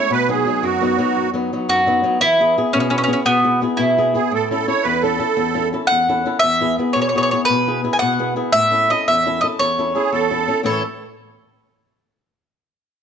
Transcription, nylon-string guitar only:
0.10 B2
0.28 F#3 B3 D#4
0.47 F#3 B3 D#4
0.63 F#2
0.81 F#3 B3 D#4
0.98 F#3 B3 D#4
1.16 F#2
1.34 F#3 B3 D#4
1.53 F#3 B3 D#4
1.69 F#2
1.86 F#3 B3 D#4
2.03 F#3 B3 D#4
2.21 E3
2.40 B3 E4 G#4
2.58 B3 E4 G#4
2.75 B2
2.91 B3 E4 G#4
3.08 B3 E4 G#4
3.25 B2
3.44 B3 E4 G#4
3.62 B3 E4 G#4
3.79 B2
3.97 B3 E4 G#4
4.14 B3 E4 G#4
4.31 A2
4.51 C#4 E4 A4
4.68 C#4 E4 A4
4.85 E2
5.03 C#4 E4 A4
5.19 C#4 E4 A4
5.37 E2
5.54 C#4 E4 A4
5.73 C#4 E4 A4
5.91 E2
6.08 C#4 E4 A4
6.26 C#4 E4 A4
6.43 E2
6.61 B3 E4 G#4
6.79 B3 E4 G#4
6.96 B2
7.15 B3 E4 G#4
7.33 B3 E4 G#4
7.50 B2
7.67 B3 E4 G#4
7.84 B3 E4 G#4
8.02 B2
8.19 B3 E4 G#4
8.36 B3 E4 G#4
8.53 A2
8.71 C#4 E4 A4
8.90 C#4 E4 A4
9.08 E2
9.26 C#4 E4 A4
9.43 C#4 E4 A4
9.60 E2
9.78 C#4 E4 A4
9.95 C#4 E4 A4
10.12 E2
10.31 C#4 E4 A4
10.48 C#4 E4 A4
10.63 A2 E3 A3 C#4 E4

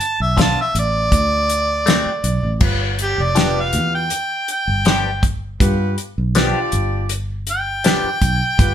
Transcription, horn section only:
2.59 B3 F4 G4 B4
3.35 B3 F4 G4 B4
5.60 B3 F4 G4 B4
6.37 D4 F4 G4 D5
8.57 B3 F4 G4 B4

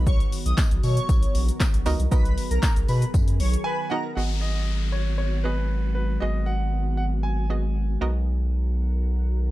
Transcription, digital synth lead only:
0.07 C#5
0.46 D#5
0.84 C#5
2.12 B4
2.51 A#4
2.89 B4
3.40 C#5
3.65 B4
3.91 A#4

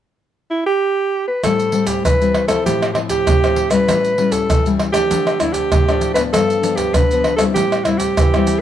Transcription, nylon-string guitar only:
1.43 A2 G3 C4 E4
1.73 G3 C4 E4
2.04 E3
2.21 G3 C4 E4
2.49 F3 C4 E4
2.66 A2
2.96 F3 C4 E4
3.27 A2
3.43 F3 C4 E4
3.71 G3 C#4 E4
3.89 A2
4.18 G3 C#4 E4
4.50 E3
4.66 G3 C#4 E4
4.93 F3 A3 D4
5.11 D3
5.41 F3 A3 D4
5.73 A2
5.88 F3 A3 D4
6.15 F3 B3 D4
6.33 G2
6.63 F3 B3 D4
6.94 D3
7.11 F3 B3 D4
7.39 G3 C4 E4
7.57 A2
7.87 G3 C4 E4
8.19 E3
8.35 G3 C4 E4

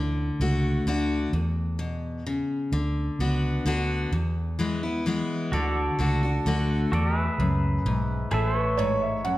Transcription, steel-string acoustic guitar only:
Already playing: D3
0.41 A3 D4 F#4
0.87 D3 A3 D4 F#4
1.33 E2
1.79 B2
2.26 C#3
2.73 D3
3.20 B3 D4 F#4
3.66 D3 B3 D4 F#4
4.12 E2
4.59 E3 G#3 B3 E4
4.83 B3 E4
5.06 E3 G#3 B3 E4
5.53 D3
5.99 D3 A3 D4 F#4
6.23 D4 F#4
6.46 D3 A3 D4 F#4
6.93 E2
7.40 F#2
7.86 G#2
8.31 A2
8.79 G#2
9.25 F#2

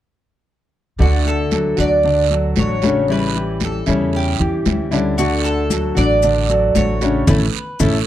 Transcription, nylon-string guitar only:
0.98 D3 A3 D4 F#4
1.77 A3 D4 F#4
2.56 D3 A3 D4 F#4
2.82 A3 D4 F#4
3.08 E3 G3 C#4 E4
3.86 G3 C#4 E4
4.65 E3 G3 C#4 E4
4.91 G3 C#4 E4
5.17 D3 A3 D4 F#4
5.95 A3 D4 F#4
6.74 D3 A3 D4 F#4
7.01 A3 D4 F#4
7.28 A3 C#4 E4
7.80 A3 C#4 E4

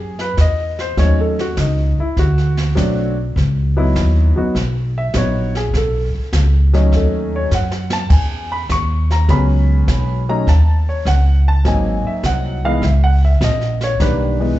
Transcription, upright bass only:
Already playing: F#2
0.37 E2
0.97 D#2
1.57 C#2
1.99 muted upright bass stroke
2.17 D2
2.77 B1
3.36 C#2
3.96 D#2
4.38 muted upright bass stroke
4.55 B1
5.14 A#1
5.74 B1
6.15 muted upright bass stroke
6.33 C#2
6.92 D#2
7.51 F#2
8.10 E2
8.69 D#2
9.28 C#2
9.88 B1
10.47 D#2
11.05 C#2
11.64 G#1
12.04 muted upright bass stroke
12.23 C2
12.82 C#2
13.41 A#1
14.00 B1

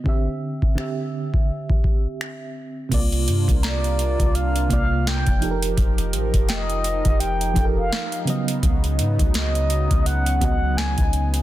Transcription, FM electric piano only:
0.04 D3 C4 G4
0.09 E5
0.75 D3 C4 G4
0.80 E5
2.89 C3 A#3 F4
2.94 D5
4.68 C3 A#3 F4
4.73 D5
5.40 F3 D#4 G4
5.45 A4
5.51 A#4
7.54 F3 D#4 G4
7.58 A4
7.65 A#4
8.25 C#3 F#3 B3
8.30 D#5
10.40 C#3 B3 F#4
10.45 D#5

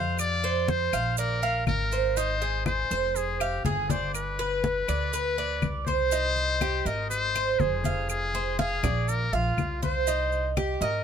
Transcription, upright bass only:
Already playing: F2
0.93 A#1
1.67 G#1
2.91 F1
3.65 G1
4.88 D2
5.62 C2
6.85 G#1
7.60 F1
8.83 A#1
9.33 A#1
9.57 C2
10.81 G#1

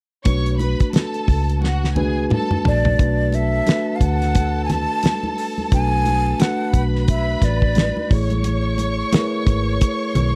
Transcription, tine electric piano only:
0.25 A3 D4 F#4 B4
1.96 A3 D4 F#4 B4
2.98 A3 D4 F#4 B4
3.66 A3 D4 F#4 B4
5.72 A3 D4 F#4 B4
6.40 A3 D4 F#4 B4
8.11 A3 E4 G#4 C#5
9.13 A3 E4 G#4 A#4
9.20 B4

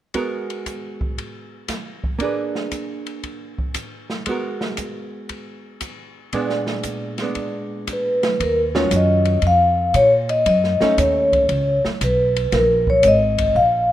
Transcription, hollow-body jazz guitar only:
0.15 G#3 B3 F#4 A#4
2.19 A#3 D4 G#4
2.24 B4
4.27 G#3 B3 F#4
4.31 A#4
6.33 A#2 G#3 B3 D4
7.20 G#3 B3 D4
8.75 D#3 F#3 C#4 F4
10.82 A3 C#4 D#4

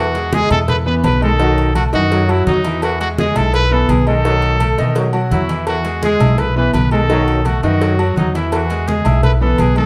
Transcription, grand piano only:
0.15 G#3 G#4 G#5
0.50 E4 E5 E6
0.86 B3 B4 B5
1.21 D#3 D#4 D#5
1.40 D#3 D#4 D#5
1.75 A3 A4 A5
1.93 D#3 D#4 D#5
2.28 F#3 F#4 F#5
2.64 E3 E4 E5
3.00 G#3 G#4 G#5
3.36 E4 E5 E6
3.71 B3 B4 B5
4.06 D#3 D#4 D#5
4.25 D#3 D#4 D#5
4.61 A3 A4 A5
4.78 D#3 D#4 D#5
5.14 F#3 F#4 F#5
5.49 E3 E4 E5
5.84 G#3 G#4 G#5
6.20 E4 E5 E6
6.56 B3 B4 B5
6.91 D#3 D#4 D#5
7.10 D#3 D#4 D#5
7.45 A3 A4 A5
7.63 D#3 D#4 D#5
7.99 F#3 F#4 F#5
8.35 E3 E4 E5
8.71 G#3 G#4 G#5
9.06 E4 E5 E6
9.41 B3 B4 B5
9.77 D#3 D#4 D#5

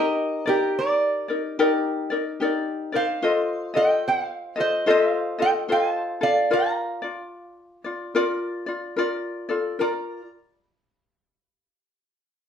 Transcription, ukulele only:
Already playing: D#4 G4 A#4
0.46 D#4 A#4 D5
1.28 D#4 A#4 D5
1.59 D#4 G4 A#4 D5
2.10 D#4 A#4 D5
2.40 D#4 G4 A#4 D5
2.92 D#4 A#4 D5
3.22 F4 A4 C5 D#5
3.74 F4 A4 D#5
4.56 F4 A4 D#5
4.86 F4 A4 C5 D#5
5.39 F4 A4 D#5
5.69 F4 A4 C5 D#5
6.21 F4 A4
6.51 F4 A#4 D5
7.02 F4 D5
7.84 F4 D5
8.15 F4 A#4 D5
8.66 F4 D5
8.96 F4 A#4 D5
9.49 F4 A4 D5
9.79 F4 A#4 D5

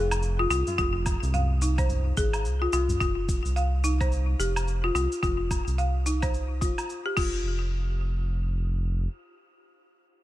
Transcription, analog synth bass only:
Already playing: F1
0.50 C2
0.79 F1
1.23 C2
2.18 G#1
2.45 C2
2.73 C2
3.01 F1
3.45 C2
4.39 F1
4.95 C2
5.23 F1
5.67 C2
6.62 F1
7.17 F1

